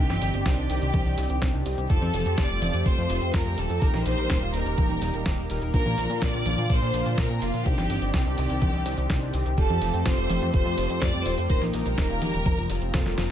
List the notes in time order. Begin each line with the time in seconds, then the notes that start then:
Already playing: C4 D4 D#4 G4 D5
0.00 D#3 G4 G5
0.10 G1 C4, snare, closed hi-hat, high conga
0.22 G1 C4, open hi-hat, cabasa
0.34 G1 C4 D4 D#4 G4, closed hi-hat, cabasa
0.46 C2 C4 G4 G5, kick, snare, closed hi-hat, cabasa
0.58 C2 D4, closed hi-hat
0.70 C2 C4, open hi-hat, cabasa
0.82 C2 G4, closed hi-hat, cabasa
0.94 C2 C4, kick, closed hi-hat, high conga, cabasa
1.06 C2 C4, closed hi-hat
1.18 C2 C4, open hi-hat, cabasa
1.30 C2 G4, closed hi-hat, cabasa
1.42 C2 C4, kick, snare, closed hi-hat, cabasa
1.54 C2 D4, closed hi-hat
1.66 C2 C4, open hi-hat, cabasa
1.78 C2 G4, closed hi-hat, cabasa
1.90 F1 F3 A3 C4 F4 G4 A4 A5, kick, closed hi-hat, cabasa
2.02 F2 F3, closed hi-hat, high conga
2.14 F1 F3, open hi-hat, cabasa
2.26 F2 C4 F4 G4 A4, closed hi-hat, cabasa
2.38 F1 F3 D5 D6, kick, snare, closed hi-hat, cabasa
2.50 F1 G3, closed hi-hat
2.62 F1 F3, open hi-hat, high conga, cabasa
2.74 F2 C4, closed hi-hat, cabasa
2.86 F1 F3 C5 C6, kick, closed hi-hat, cabasa
2.98 F2 F3, closed hi-hat
3.10 F1 F3, open hi-hat, cabasa
3.22 F2 C4, closed hi-hat, cabasa
3.34 F2 F3 A#4 A#5, kick, snare, closed hi-hat, cabasa
3.46 F2 G3, closed hi-hat
3.58 D#1 F3 A4 A5, open hi-hat, cabasa
3.70 F2 C4, closed hi-hat, cabasa
3.81 D#1 D#3 G3 A#3 D#4 G4 A#4 A#5, kick, closed hi-hat, cabasa
3.94 A#1 D#4, snare, closed hi-hat, high conga
4.06 A#1 D#4 C5 C6, open hi-hat, cabasa
4.18 A#1 A#3 D#4 G4 A#4, closed hi-hat, cabasa
4.30 D#1 D#4, kick, snare, closed hi-hat, cabasa
4.42 D#1 F4, closed hi-hat
4.54 D#1 D#4 A#4 A#5, open hi-hat, cabasa
4.66 D#1 A#4, closed hi-hat, cabasa
4.78 D#1 D#4, kick, closed hi-hat, high conga, cabasa
4.90 D#1 D#4, closed hi-hat
5.02 D#1 D#4, open hi-hat, cabasa
5.14 D#1 D#4, closed hi-hat, cabasa
5.26 D#1 A#3 D#4 G4 A#4, kick, snare, closed hi-hat, cabasa
5.38 D#1 D#4, closed hi-hat
5.50 D#1 A#3 D#4 G4 A#4, open hi-hat, cabasa
5.62 D#1 A#4, closed hi-hat, cabasa
5.74 A#1 D3 F3 A#3 D4 F4 A#4 A#5, kick, closed hi-hat, cabasa
5.86 A#2 A#3, closed hi-hat, high conga
5.98 A#1 A#3, open hi-hat, cabasa
6.10 A#2 A#3 D4 F4 A#4, closed hi-hat, cabasa
6.22 A#1 A#3 D5 D6, kick, snare, closed hi-hat, cabasa
6.34 A#1 C4, closed hi-hat
6.46 A#1 A#3, open hi-hat, high conga, cabasa
6.58 A#2 F4, closed hi-hat, cabasa
6.70 A#1 A#3 C5 C6, kick, closed hi-hat, cabasa
6.82 A#2 A#3, closed hi-hat
6.94 A#1 A#3, open hi-hat, cabasa
7.06 A#2 F4, closed hi-hat, cabasa
7.18 A#2 A#3 A#4 A#5, kick, snare, closed hi-hat, cabasa
7.30 A#2 C4, closed hi-hat
7.42 F1 A#3 F4 F5, open hi-hat, cabasa
7.54 A#2 F4, closed hi-hat, cabasa
7.66 C2 D#3 C4 D4 D#4 G4 D5 G5, kick, closed hi-hat, cabasa
7.78 G1 C4, snare, closed hi-hat, high conga
7.90 G1 C4, open hi-hat, cabasa
8.02 G1 C4 D4 D#4 G4, closed hi-hat, cabasa
8.13 C2 C4 G4 G5, kick, snare, closed hi-hat, cabasa
8.26 C2 D4, closed hi-hat
8.38 C2 C4, open hi-hat, cabasa
8.50 C2 G4, closed hi-hat, cabasa
8.62 C2 C4, kick, closed hi-hat, high conga, cabasa
8.74 C2 C4, closed hi-hat
8.86 C2 C4, open hi-hat, cabasa
8.98 C2 G4, closed hi-hat, cabasa
9.10 C2 C4, kick, snare, closed hi-hat, cabasa
9.22 C2 D4, closed hi-hat
9.34 C2 C4, open hi-hat, cabasa
9.46 C2 G4, closed hi-hat, cabasa
9.58 F1 F3 A3 C4 F4 G4 A4 A5, kick, closed hi-hat, cabasa
9.70 F2 F3, closed hi-hat, high conga
9.82 F1 F3, open hi-hat, cabasa
9.94 F2 C4 F4 G4 A4, closed hi-hat, cabasa
10.06 F1 F3 C5 C6, kick, snare, closed hi-hat, cabasa
10.18 F1 G3, closed hi-hat
10.30 F1 F3, open hi-hat, high conga, cabasa
10.42 F2 C4, closed hi-hat, cabasa
10.54 F1 F3 C5 C6, kick, closed hi-hat, cabasa
10.66 F2 F3, closed hi-hat
10.78 F1 F3, open hi-hat, cabasa
10.90 F2 C4, closed hi-hat, cabasa
11.02 F2 F3 D5 D6, kick, snare, closed hi-hat, cabasa
11.14 F2 G3, closed hi-hat
11.26 D#1 F3 C5 C6, open hi-hat, cabasa
11.38 F2 C4, closed hi-hat, cabasa
11.50 D#1 D#3 G3 A#3 D#4 G4 A#4 C5 C6, kick, closed hi-hat, cabasa
11.62 A#1 D#4, snare, closed hi-hat, high conga
11.74 A#1 D#4 A#4 A#5, open hi-hat, cabasa
11.86 A#1 A#3 D#4 G4 A#4, closed hi-hat, cabasa
11.98 D#1 D#4, kick, snare, closed hi-hat, cabasa
12.10 D#1 F4, closed hi-hat
12.22 D#1 D#4, open hi-hat, high conga, cabasa
12.34 D#1 A#4, closed hi-hat, cabasa
12.46 F1 C3 F3 F4, kick, closed hi-hat, high conga, cabasa
12.58 F1 F3, closed hi-hat
12.70 F1 F3, open hi-hat, cabasa
12.82 F1 C4, closed hi-hat, cabasa
12.94 F1 F3 A#3 C4 F4 A4, kick, snare, closed hi-hat, cabasa
13.06 F1 G3, snare, closed hi-hat
13.18 F1 F3 A#3 C4 F4 A#4, snare, open hi-hat, cabasa